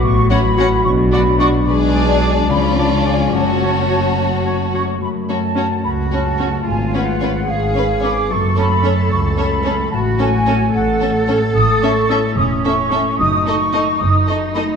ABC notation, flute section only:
X:1
M:6/8
L:1/8
Q:3/8=73
K:F#m
V:1 name="Flute section"
c' b2 c' b c' | b a2 b a g | a4- a c' | b a2 b a2 |
g f2 ^e2 d' | c' b2 c' b2 | a g2 f2 z | [K:Alyd] d' c' e' d' c'2 |
d' c'2 d' c' b |]